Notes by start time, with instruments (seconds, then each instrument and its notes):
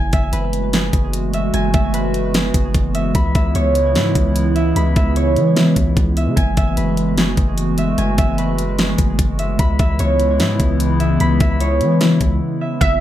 Already playing: 808-style bass F#1, analog synth pad E3 G#3 A3 B3 F#4, harp E4 C#5 E5 G#5
0.13 808-style bass F#1, harp E5, kick, closed hi-hat
0.33 808-style bass F#1, harp B4, closed hi-hat
0.53 closed hi-hat
0.73 harp G#4, snare, closed hi-hat
0.93 808-style bass F#1, kick, closed hi-hat
1.13 closed hi-hat
1.34 harp E5, closed hi-hat
1.54 808-style bass F#1, harp G#5, closed hi-hat
1.74 808-style bass F#1, harp E5, kick, closed hi-hat
1.94 harp B4, closed hi-hat
2.14 closed hi-hat
2.34 harp G#4, snare, closed hi-hat
2.54 808-style bass F#1, kick, closed hi-hat
2.74 808-style bass F#1, kick, closed hi-hat
2.95 harp E5, closed hi-hat
3.15 808-style bass C#2, analog synth pad C#3 G#3 E4, harp B5, kick, closed hi-hat
3.35 808-style bass C#2, harp E5, kick, closed hi-hat
3.55 808-style bass C#2, harp C#5, closed hi-hat
3.75 closed hi-hat
3.95 808-style bass G#2, harp E4, snare, closed hi-hat
4.15 808-style bass C#2, kick, closed hi-hat
4.36 closed hi-hat
4.56 harp E5, closed hi-hat
4.76 808-style bass C#2, harp B5, closed hi-hat
4.96 808-style bass C#2, harp E5, kick, closed hi-hat
5.16 harp C#5, closed hi-hat
5.36 808-style bass E3, closed hi-hat
5.56 harp E4, snare, closed hi-hat
5.76 808-style bass C#2, kick, closed hi-hat
5.97 808-style bass C#2, kick, closed hi-hat
6.17 harp E5, closed hi-hat
6.27 808-style bass C#3
6.36 808-style bass F#1, analog synth pad A3 F#4, harp G#5, kick, closed hi-hat
6.57 808-style bass F#1, harp E5, kick, closed hi-hat
6.77 808-style bass F#1, harp B4, closed hi-hat
6.97 closed hi-hat
7.18 harp G#4, snare, closed hi-hat
7.37 808-style bass F#1, kick, closed hi-hat
7.58 closed hi-hat
7.78 harp E5, closed hi-hat
7.98 808-style bass F#1, harp G#5, closed hi-hat
8.18 808-style bass F#1, harp E5, kick, closed hi-hat
8.38 harp B4, closed hi-hat
8.59 closed hi-hat
8.79 harp G#4, snare, closed hi-hat
8.98 808-style bass F#1, kick, closed hi-hat
9.19 808-style bass F#1, kick, closed hi-hat
9.39 harp E5, closed hi-hat
9.59 808-style bass C#2, analog synth pad C#3 E3 B3 E4, harp B5, kick, closed hi-hat
9.79 808-style bass C#2, harp E5, kick, closed hi-hat
9.99 808-style bass C#2, harp C#5, closed hi-hat
10.20 closed hi-hat
10.40 808-style bass G#2, harp E4, snare, closed hi-hat
10.60 808-style bass C#2, kick, closed hi-hat
10.80 closed hi-hat
11.00 harp E5, closed hi-hat
11.20 808-style bass C#2, harp B5, closed hi-hat
11.40 808-style bass C#2, harp E5, kick, closed hi-hat
11.61 harp C#5, closed hi-hat
11.81 808-style bass E3, closed hi-hat
12.00 harp E4, snare, closed hi-hat
12.21 808-style bass C#2, kick, closed hi-hat
12.61 harp E5
12.81 808-style bass F#1, analog synth pad E3 G#3 A3 B3 F#4, synth pluck E5, kick, closed hi-hat